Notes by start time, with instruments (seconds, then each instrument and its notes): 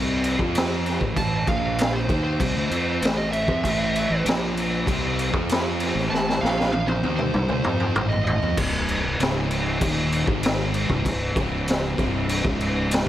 Already playing: fingered electric bass C2, distorted electric guitar C3 G3 C4
0.24 crash
0.38 fingered electric bass F2, distorted electric guitar F3 C4 F4, kick
0.55 snare, crash
0.86 snare, crash
1.00 fingered electric bass A1, distorted electric guitar A2 E3, kick
1.16 fingered electric bass A1, distorted electric guitar A2 E3, lead electric guitar A5, kick, crash
1.47 fingered electric bass A#1, distorted electric guitar A#2 F3 A#3, lead electric guitar F5, kick, crash
1.79 lead electric guitar F5, snare, crash
1.93 lead electric guitar C5
2.08 fingered electric bass D#2, distorted electric guitar D#3 A#3 D#4, kick, crash
2.24 lead electric guitar C5
2.39 fingered electric bass C2, distorted electric guitar C3 G3, kick, crash
2.55 fingered electric bass D2, distorted electric guitar D3 A3
2.70 fingered electric bass F2, distorted electric guitar F3 C4 F4, crash
3.02 fingered electric bass A1, distorted electric guitar A2 E3 A3, snare, crash
3.17 lead electric guitar D#5
3.32 lead electric guitar E5, crash
3.48 fingered electric bass F2, distorted electric guitar F3 C4, kick
3.63 fingered electric bass A1, distorted electric guitar A2 E3 A3, kick, crash
3.95 crash
4.09 fingered electric bass A1, distorted electric guitar A2 E3
4.24 fingered electric bass A#1, distorted electric guitar A#2 F3 A#3, crash
4.29 snare
4.57 crash
4.86 fingered electric bass C2, distorted electric guitar C3 G3 C4, kick, crash
5.19 crash
5.32 fingered electric bass F2, distorted electric guitar F3 C4 F4, kick
5.49 snare, crash
5.80 snare, crash
5.94 fingered electric bass A1, distorted electric guitar A2 E3
5.98 snare
6.10 fingered electric bass A1, distorted electric guitar A2 E3, lead electric guitar A5, snare
6.29 snare
6.41 fingered electric bass A#1, distorted electric guitar A#2 F3 A#3, lead electric guitar F5, snare
6.60 snare
6.72 lead electric guitar F5, high tom
6.87 lead electric guitar C5, high tom
7.02 fingered electric bass D#2, distorted electric guitar D#3 A#3 D#4, high tom
7.16 lead electric guitar C5, mid tom
7.34 fingered electric bass C2, distorted electric guitar C3 G3, mid tom
7.49 fingered electric bass D2, distorted electric guitar D3 A3, mid tom
7.64 fingered electric bass F2, distorted electric guitar F3 C4 F4, mid tom
7.80 mid tom
7.96 fingered electric bass A1, distorted electric guitar A2 E3 A3, mid tom
8.09 lead electric guitar D#5, floor tom
8.25 lead electric guitar D#5, floor tom
8.42 fingered electric bass F2, distorted electric guitar F3 C4, floor tom
8.57 fingered electric bass C1, distorted electric guitar C2 G2 C3, kick, crash
8.89 crash
9.04 fingered electric bass C1, distorted electric guitar C2 G2
9.19 fingered electric bass C#1, distorted electric guitar C#2 G#2 C#3, snare, crash
9.51 crash
9.81 fingered electric bass D#1, distorted electric guitar D#2 A#2 D#3, kick, crash
10.12 crash
10.27 fingered electric bass G#1, distorted electric guitar G#2 D#3 G#3, kick
10.43 snare, crash
10.74 crash
10.88 fingered electric bass C1, distorted electric guitar C2 G2, kick
11.04 fingered electric bass C1, distorted electric guitar C2 G2, kick, crash
11.35 fingered electric bass C#1, distorted electric guitar C#2 G#2 C#3, kick, crash
11.68 snare, crash
11.97 fingered electric bass C1, distorted electric guitar C2 G2 C3, kick, crash
12.29 crash
12.44 fingered electric bass C#1, distorted electric guitar C#2 G#2 C#3, kick
12.60 crash
12.91 snare, crash